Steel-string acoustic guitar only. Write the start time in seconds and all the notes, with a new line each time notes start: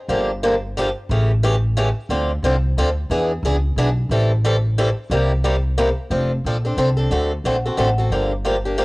0.09 D3 F3 A#3 D4 G4
0.43 D3 F3 A#3 D4 G4
0.77 D3 F3 A#3 D4 G4
1.11 C#3 E3 A3 C#4 G4
1.43 C#3 E3 A3 C#4 G4
1.77 C#3 E3 A3 C#4 G4
2.10 D3 F3 C4 D4 A4
2.44 D3 F3 C4 D4 A4
2.78 D3 F3 C4 D4 A4
3.11 E3 B3 D4 G#4
3.45 E3 B3 D4 G#4
3.78 E3 B3 D4 G#4
4.11 E3 G3 C4 E4 A4
4.45 E3 G3 C4 E4 A4
4.78 E3 G3 C4 E4 A4
5.11 C3 G3 A#3 E4 G4
5.44 C3 G3 A#3 E4 G4
5.78 C3 G3 A#3 E4 G4
6.11 F3 C4 D4 A4
6.46 F3 C4 D4 A4
6.65 C4 D4 A4
6.78 F3 C4 D4 A4
6.97 C4 D4 A4
7.11 D3 A3 C4 F#4 A4
7.45 D3 A3 C4 F#4 A4
7.66 C4 F#4 A4
7.77 D3 A3 C4 F#4 A4
7.98 C4 F#4 A4
8.12 D3 F3 A#3 D4 G4
8.45 D3 F3 A#3 D4 G4
8.65 A#3 D4 G4
8.78 D3 F3 A#3 D4 G4